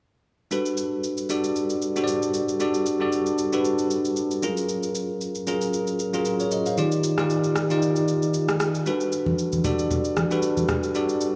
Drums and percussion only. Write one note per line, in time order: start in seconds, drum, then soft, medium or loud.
0.51 shaker medium
0.66 shaker soft
0.77 shaker medium
1.04 shaker medium
1.17 shaker soft
1.30 shaker medium
1.44 shaker medium
1.56 shaker medium
1.70 shaker soft
1.82 shaker medium
1.96 shaker medium
2.08 shaker medium
2.22 shaker medium
2.34 shaker medium
2.48 shaker medium
2.60 shaker medium
2.74 shaker soft
2.86 shaker medium
3.12 shaker medium
3.26 shaker soft
3.38 shaker medium
3.53 shaker medium
3.65 shaker medium
3.78 shaker soft
3.91 shaker medium
4.05 shaker medium
4.16 shaker medium
4.31 shaker medium
4.43 shaker medium
4.57 shaker medium
4.69 shaker medium
4.83 shaker medium
4.95 shaker medium
5.21 shaker medium
5.35 shaker soft
5.47 shaker medium
5.61 shaker medium
5.73 shaker medium
5.87 shaker medium
5.99 shaker medium
6.14 shaker medium
6.25 shaker medium
6.40 shaker medium
6.51 shaker medium
6.66 shaker medium
6.78 shaker medium
6.92 shaker medium
7.04 shaker medium
7.18 cross-stick medium
7.18 shaker soft
7.30 shaker medium
7.44 shaker soft
7.56 cross-stick medium
7.56 shaker medium
7.70 shaker medium
7.82 shaker medium
7.96 shaker medium
8.08 shaker medium
8.22 shaker medium
8.34 shaker medium
8.49 cross-stick medium
8.49 shaker medium
8.60 cross-stick medium
8.60 shaker medium
8.75 shaker medium
8.86 shaker medium
9.00 shaker soft
9.12 shaker medium
9.26 high conga medium
9.39 shaker medium
9.52 high conga medium
9.52 shaker soft
9.64 low conga medium
9.64 shaker medium
9.79 high conga soft
9.79 shaker medium
9.91 low conga medium
9.91 shaker medium
10.05 shaker medium
10.17 cross-stick medium
10.17 high conga medium
10.17 shaker medium
10.31 shaker medium
10.42 shaker medium
10.57 high conga medium
10.57 shaker medium
10.69 cross-stick loud
10.69 low conga medium
10.69 shaker medium
10.83 shaker medium
10.95 shaker medium
11.09 shaker medium
11.21 shaker medium